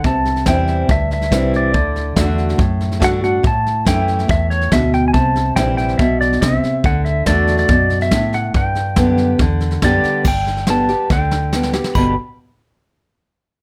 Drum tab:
CC |----------------|----------------|----------------|----------------|
HH |----p-------p---|----p-------p---|----p-------p---|----p-------p---|
SD |o-ooo-o-o-ooo-o-|o-o-o-ooo-ooo-o-|o-o-o-ooo-ooo-o-|o-o-o-ooo-ooo-o-|
BD |o---o---o---o---|o---o---o---o---|o---o---o---o---|o---o---o---o---|

CC |----------------|----------------|x---------------|x---------------|
HH |----p-------p---|----p-------p---|----p-------p---|----------------|
SD |o-o-o-ooo-ooo-o-|o-o-o-o-o-ooo-o-|o-ooo-o-o-o-oooo|----------------|
BD |o---o---o---o---|o---o---o---o---|o-------o-------|o---------------|